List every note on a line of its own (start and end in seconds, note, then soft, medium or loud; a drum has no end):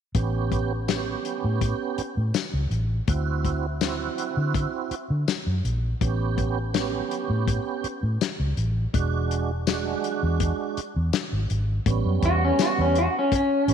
0.15 1.14 A1 medium
0.15 0.73 B3 medium
0.15 0.73 C#4 medium
0.15 0.73 G4 medium
0.15 kick medium
0.15 closed hi-hat medium
0.52 kick medium
0.52 closed hi-hat soft
0.88 2.02 B3 medium
0.88 2.02 C#4 medium
0.88 2.02 G4 medium
0.88 snare medium
0.88 closed hi-hat medium
0.88 tambourine medium
1.25 closed hi-hat medium
1.44 1.73 A2 medium
1.61 kick medium
1.61 closed hi-hat medium
1.98 muted fingered electric bass stroke soft
1.98 closed hi-hat medium
2.17 2.31 A2 medium
2.34 snare medium
2.34 closed hi-hat medium
2.34 tambourine medium
2.53 2.67 C#2 medium
2.71 2.99 A1 medium
2.71 closed hi-hat medium
3.08 4.07 D2 medium
3.08 3.66 C4 medium
3.08 3.66 E4 medium
3.08 3.66 F#4 medium
3.08 kick medium
3.08 closed hi-hat medium
3.45 kick medium
3.45 closed hi-hat soft
3.81 4.95 C4 medium
3.81 4.95 E4 medium
3.81 4.95 F#4 medium
3.81 snare medium
3.81 closed hi-hat medium
3.81 tambourine medium
4.18 closed hi-hat medium
4.37 4.65 D3 medium
4.54 kick medium
4.54 closed hi-hat medium
4.91 muted fingered electric bass stroke soft
4.91 closed hi-hat medium
5.10 5.24 D3 medium
5.28 snare medium
5.28 closed hi-hat medium
5.28 tambourine medium
5.47 5.60 F#2 medium
5.64 5.93 A#1 medium
5.64 closed hi-hat medium
6.01 7.00 A1 medium
6.01 6.59 B3 medium
6.01 6.59 C#4 medium
6.01 6.59 G4 medium
6.01 kick medium
6.01 closed hi-hat medium
6.38 kick medium
6.38 closed hi-hat medium
6.73 7.87 B3 medium
6.73 7.88 C#4 medium
6.73 7.88 G4 medium
6.73 snare loud
6.73 closed hi-hat medium
6.73 tambourine medium
7.11 closed hi-hat medium
7.30 7.58 A2 medium
7.48 kick medium
7.48 closed hi-hat medium
7.84 muted fingered electric bass stroke soft
7.84 closed hi-hat medium
8.03 8.17 A2 medium
8.21 snare medium
8.21 closed hi-hat medium
8.21 tambourine medium
8.40 8.53 C#2 medium
8.57 8.85 A1 medium
8.57 closed hi-hat medium
8.93 9.93 E1 medium
8.93 9.51 G#3 medium
8.93 9.51 D4 medium
8.93 9.51 F#4 medium
8.93 kick medium
8.93 closed hi-hat medium
9.31 closed hi-hat medium
9.67 10.80 G#3 medium
9.67 10.81 D4 medium
9.67 10.81 F#4 medium
9.67 snare loud
9.67 closed hi-hat medium
9.67 tambourine loud
10.04 closed hi-hat medium
10.23 10.51 E2 medium
10.40 kick medium
10.40 closed hi-hat medium
10.77 muted fingered electric bass stroke soft
10.77 closed hi-hat medium
10.96 11.09 E2 medium
11.13 snare medium
11.13 closed hi-hat medium
11.13 tambourine medium
11.32 11.46 G#1 medium
11.50 11.78 G#1 medium
11.50 closed hi-hat medium
11.86 12.01 A1 loud
11.86 12.99 G3 medium
11.86 12.99 B3 medium
11.86 13.00 C#4 medium
11.86 kick loud
11.86 closed hi-hat medium
12.05 12.19 F#2 medium
12.22 12.50 E2 medium
12.22 12.43 F#4 medium
12.22 kick medium
12.22 closed hi-hat medium
12.45 12.60 C#4 medium
12.59 12.79 F#4 medium
12.59 snare loud
12.59 closed hi-hat medium
12.59 tambourine loud
12.78 13.06 E2 medium
12.78 12.97 C#4 medium
12.95 13.16 F#4 medium
12.95 closed hi-hat medium
13.19 13.33 C#4 medium
13.32 13.74 C#4 medium
13.32 kick medium
13.32 closed hi-hat medium
13.68 13.74 A1 medium
13.68 13.74 G3 medium
13.68 13.74 B3 medium
13.68 13.74 C#4 medium
13.68 closed hi-hat medium